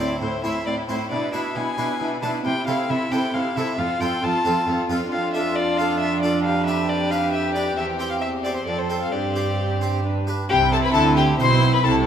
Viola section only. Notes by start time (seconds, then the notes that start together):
0.00 C4
0.21 C4
0.44 C4
0.66 C4
0.88 C4
1.11 D4
1.33 D4
1.56 D4
1.78 D4
2.00 D4
2.22 D4
2.44 C4
2.67 C4
2.89 C4
3.11 C4
3.34 C4
3.56 C4
3.78 C4
4.00 C4
4.22 C4
4.45 C4
4.67 C4
4.89 C4
5.11 D4
7.78 C4
10.05 D4
10.50 C4
11.40 C4
11.85 A3